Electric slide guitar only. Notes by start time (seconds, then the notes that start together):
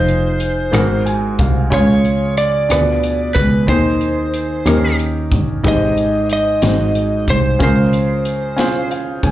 Already playing: C5
1.74 C#5
2.38 D5
3.35 B4
3.69 C5
5.68 D#5
6.33 D#5
7.30 C5
7.63 C5